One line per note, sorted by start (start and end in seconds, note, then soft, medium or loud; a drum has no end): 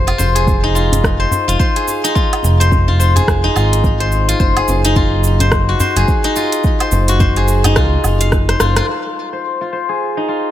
0.00 0.12 F1 loud
0.00 0.35 G#4 medium
0.00 0.18 C5 medium
0.07 0.75 F4 medium
0.07 closed hi-hat soft
0.07 low woodblock medium
0.18 1.26 F1 loud
0.18 1.19 C5 medium
0.18 djembe slap medium
0.18 djembe tone medium
0.18 cabasa medium
0.35 1.76 G#4 medium
0.35 closed hi-hat medium
0.35 cabasa soft
0.47 kick medium
0.47 djembe bass medium
0.47 cabasa soft
0.64 2.04 D#4 medium
0.75 1.47 F4 medium
0.75 cabasa medium
0.92 closed hi-hat soft
0.92 djembe bass medium
0.92 cabasa soft
1.04 kick loud
1.04 cross-stick medium
1.04 cabasa soft
1.20 1.59 C5 medium
1.31 djembe tone medium
1.31 djembe bass medium
1.31 cabasa medium
1.48 1.56 F1 medium
1.48 2.15 F4 medium
1.48 closed hi-hat medium
1.48 djembe slap soft
1.48 djembe tone soft
1.48 cabasa soft
1.59 2.60 C5 medium
1.59 kick loud
1.59 cabasa soft
1.76 3.15 G#4 medium
1.76 closed hi-hat soft
1.88 djembe tone soft
1.88 cabasa medium
2.04 3.43 D#4 medium
2.04 closed hi-hat medium
2.04 cabasa soft
2.15 2.88 F4 medium
2.15 kick loud
2.15 cabasa soft
2.33 closed hi-hat soft
2.33 low woodblock medium
2.43 3.22 F1 medium
2.43 djembe slap medium
2.43 djembe tone medium
2.43 cabasa medium
2.60 2.99 C5 medium
2.60 closed hi-hat medium
2.60 cabasa soft
2.72 kick loud
2.72 djembe bass medium
2.72 cabasa soft
2.88 3.55 F4 medium
2.88 djembe tone medium
3.00 4.00 C5 medium
3.00 cabasa medium
3.16 4.56 G#4 medium
3.16 closed hi-hat medium
3.16 djembe bass medium
3.16 cabasa soft
3.28 3.49 F1 medium
3.28 kick loud
3.28 cross-stick medium
3.28 cabasa soft
3.44 4.84 D#4 loud
3.44 djembe tone soft
3.55 4.34 G#1 medium
3.55 4.28 F4 medium
3.55 djembe slap medium
3.55 cabasa medium
3.55 low woodblock medium
3.73 closed hi-hat medium
3.73 djembe tone soft
3.73 cabasa soft
3.84 kick loud
3.84 cabasa soft
4.00 4.39 C5 medium
4.00 closed hi-hat soft
4.12 djembe tone soft
4.12 cabasa medium
4.28 4.96 F4 medium
4.28 closed hi-hat medium
4.28 cabasa soft
4.40 4.61 F#1 loud
4.40 5.40 C5 medium
4.40 kick loud
4.40 cabasa soft
4.56 5.96 G#4 medium
4.56 closed hi-hat soft
4.56 low woodblock medium
4.68 5.74 F#1 loud
4.68 djembe slap medium
4.68 djembe tone medium
4.68 cabasa medium
4.85 6.24 D#4 medium
4.85 closed hi-hat medium
4.85 cabasa soft
4.96 5.75 F4 medium
4.96 kick medium
4.96 djembe bass medium
4.96 cabasa soft
5.24 cabasa medium
5.40 5.80 C5 medium
5.40 closed hi-hat medium
5.40 djembe bass medium
5.40 cabasa soft
5.52 kick medium
5.52 cross-stick medium
5.52 cabasa soft
5.69 6.42 F#4 medium
5.80 6.80 C5 medium
5.80 djembe tone medium
5.80 djembe bass medium
5.80 cabasa medium
5.96 6.04 F#1 medium
5.96 7.37 G#4 medium
5.96 closed hi-hat medium
5.96 djembe slap soft
5.96 djembe tone soft
5.96 cabasa soft
6.08 kick medium
6.08 cabasa soft
6.24 7.64 D#4 loud
6.24 closed hi-hat soft
6.36 7.15 F4 medium
6.36 djembe tone soft
6.36 cabasa medium
6.52 closed hi-hat medium
6.52 cabasa soft
6.64 kick loud
6.64 cabasa soft
6.80 7.20 C5 medium
6.80 closed hi-hat soft
6.80 low woodblock medium
6.92 7.78 F#1 loud
6.92 djembe slap medium
6.92 djembe tone medium
6.92 cabasa medium
7.08 7.82 F#4 medium
7.08 closed hi-hat medium
7.08 djembe slap soft
7.08 cabasa soft
7.20 8.48 C5 medium
7.20 kick medium
7.20 djembe bass medium
7.20 cabasa soft
7.36 9.64 G#4 medium
7.36 closed hi-hat soft
7.36 djembe tone medium
7.48 cabasa medium
7.64 10.17 D#4 loud
7.64 closed hi-hat medium
7.64 djembe bass medium
7.64 cabasa soft
7.64 low woodblock medium
7.76 7.97 C#2 medium
7.76 8.60 F4 medium
7.76 kick loud
7.76 cross-stick medium
7.76 cabasa soft
7.93 djembe tone soft
8.04 8.55 F#1 medium
8.04 djembe slap medium
8.04 cabasa medium
8.04 low woodblock medium
8.21 9.87 F5 medium
8.21 closed hi-hat medium
8.21 djembe tone soft
8.21 cabasa soft
8.32 kick loud
8.32 cross-stick medium
8.32 cabasa soft
8.49 9.32 C5 medium
8.49 cross-stick medium
8.49 closed hi-hat soft
8.60 8.81 F#1 loud
8.60 8.76 F4 medium
8.60 cross-stick medium
8.60 djembe tone soft
8.60 cabasa medium
8.77 8.88 F4 medium
8.77 cross-stick medium
8.77 closed hi-hat medium
8.77 cabasa soft
8.88 9.61 F4 medium
9.33 9.72 C5 medium
9.61 10.28 F4 medium
9.73 10.51 C5 medium
9.89 10.51 G#4 medium
10.17 10.51 D#4 medium
10.28 10.51 F4 medium